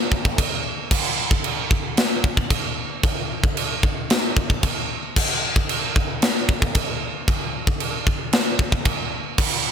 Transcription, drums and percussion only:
0.12 kick
0.25 kick
0.38 kick, china
0.91 kick, china, crash
1.31 kick
1.44 china
1.71 kick
1.97 snare, china
2.24 kick
2.37 kick
2.50 kick, china
3.03 kick, china
3.44 kick
3.57 china
3.83 kick
4.10 snare, china
4.37 kick
4.50 kick
4.63 kick, china
5.16 kick, crash, china
5.56 kick
5.69 china
5.96 kick
6.22 snare, china
6.49 kick
6.62 kick
6.75 kick, china
7.28 kick, china
7.67 kick
7.80 china
8.07 kick
8.33 snare, china
8.59 kick
8.72 kick
8.85 kick, china
9.38 kick, china, crash

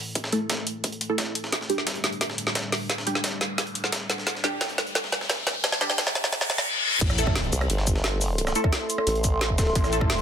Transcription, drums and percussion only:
0.15 kick, closed hi-hat
0.24 snare
0.32 closed hi-hat
0.50 kick, snare, closed hi-hat
0.67 closed hi-hat
0.84 kick, closed hi-hat
0.92 closed hi-hat
1.01 closed hi-hat
1.18 kick, snare, closed hi-hat
1.35 closed hi-hat
1.44 snare
1.52 kick, snare, closed hi-hat
1.61 snare
1.70 closed hi-hat
1.78 snare
1.87 kick, snare, closed hi-hat
1.95 closed hi-hat
2.04 snare, closed hi-hat
2.12 closed hi-hat
2.21 kick, snare, closed hi-hat
2.30 snare
2.38 closed hi-hat
2.47 snare
2.55 kick, snare, closed hi-hat
2.72 snare, closed hi-hat, open hi-hat
2.90 kick, snare, closed hi-hat
2.98 snare
3.07 closed hi-hat
3.15 snare
3.24 kick, snare, closed hi-hat
3.41 snare, closed hi-hat
3.58 kick, snare, closed hi-hat
3.67 closed hi-hat
3.75 closed hi-hat
3.84 snare
3.92 kick, snare, closed hi-hat
4.10 snare, closed hi-hat
4.18 snare
4.27 kick, snare, closed hi-hat
4.35 snare
4.44 snare, closed hi-hat
4.61 kick, snare, closed hi-hat
4.70 closed hi-hat
4.78 snare, closed hi-hat
4.87 closed hi-hat
4.95 kick, snare, closed hi-hat
5.04 snare
5.12 snare, closed hi-hat
5.21 snare
5.30 kick, snare, closed hi-hat
5.47 snare, closed hi-hat
5.64 kick, snare, closed hi-hat
5.72 snare
5.81 snare, closed hi-hat
5.90 snare
5.98 kick, snare, closed hi-hat
6.07 snare
6.15 snare, closed hi-hat
6.24 snare
6.33 kick, snare, closed hi-hat
6.41 snare, closed hi-hat
6.50 snare, closed hi-hat
6.58 snare
7.01 kick, closed hi-hat, crash
7.10 cross-stick, snare, cabasa
7.18 closed hi-hat, cabasa
7.27 kick, cross-stick
7.35 snare, closed hi-hat
7.44 closed hi-hat
7.53 closed hi-hat, cabasa
7.61 cross-stick, closed hi-hat
7.70 closed hi-hat
7.78 snare
7.87 kick, closed hi-hat, cabasa
7.95 snare
8.04 snare, closed hi-hat
8.21 closed hi-hat, open hi-hat, cabasa
8.38 closed hi-hat
8.47 cross-stick, snare, cabasa
8.55 closed hi-hat, cabasa
8.64 kick, cross-stick
8.73 snare, closed hi-hat
8.90 closed hi-hat, cabasa
8.98 cross-stick
9.07 closed hi-hat
9.15 closed hi-hat
9.24 kick, closed hi-hat, cabasa
9.41 snare, closed hi-hat
9.50 kick
9.58 kick, snare, closed hi-hat, cabasa
9.67 snare
9.75 kick, closed hi-hat
9.84 cross-stick, snare, cabasa
9.93 closed hi-hat, cabasa
10.01 kick, cross-stick
10.10 snare, closed hi-hat
10.18 closed hi-hat

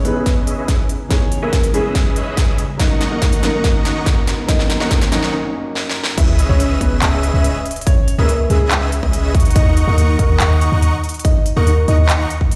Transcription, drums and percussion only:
0.05 closed hi-hat
0.26 kick, snare, closed hi-hat
0.47 closed hi-hat
0.68 kick, snare, closed hi-hat
0.89 closed hi-hat
1.11 kick, snare, closed hi-hat
1.32 closed hi-hat
1.53 kick, snare, closed hi-hat
1.63 closed hi-hat
1.74 closed hi-hat
1.95 kick, snare, closed hi-hat
2.16 closed hi-hat
2.37 kick, snare, closed hi-hat
2.58 closed hi-hat
2.79 kick, snare, closed hi-hat
3.01 snare, closed hi-hat
3.22 kick, snare, closed hi-hat
3.32 closed hi-hat
3.43 snare, closed hi-hat
3.64 kick, snare, closed hi-hat
3.85 snare, closed hi-hat
4.06 kick, snare, closed hi-hat
4.27 snare, closed hi-hat
4.49 kick, snare, closed hi-hat
4.59 snare
4.70 snare, closed hi-hat
4.80 snare
4.91 kick, snare, closed hi-hat
5.01 snare, closed hi-hat
5.12 snare, closed hi-hat
5.23 snare
5.75 snare
5.89 snare
6.04 snare
6.18 kick, closed hi-hat, crash
6.39 closed hi-hat
6.60 closed hi-hat
6.81 kick, closed hi-hat
7.02 clap, closed hi-hat
7.23 closed hi-hat
7.44 closed hi-hat
7.66 closed hi-hat
7.71 closed hi-hat
7.76 closed hi-hat
7.81 closed hi-hat
7.87 kick, closed hi-hat
8.08 closed hi-hat
8.29 closed hi-hat
8.50 closed hi-hat
8.71 clap, closed hi-hat
8.92 closed hi-hat
9.03 kick
9.13 closed hi-hat
9.35 kick, closed hi-hat
9.40 closed hi-hat
9.45 closed hi-hat
9.51 closed hi-hat
9.56 kick, closed hi-hat
9.77 closed hi-hat
9.98 closed hi-hat
10.19 kick, closed hi-hat
10.40 clap, closed hi-hat
10.61 closed hi-hat
10.82 closed hi-hat
11.04 closed hi-hat
11.09 closed hi-hat
11.14 closed hi-hat
11.19 closed hi-hat
11.25 kick, closed hi-hat
11.46 closed hi-hat
11.67 closed hi-hat
11.88 closed hi-hat
12.09 clap, closed hi-hat
12.30 closed hi-hat
12.41 kick
12.51 closed hi-hat

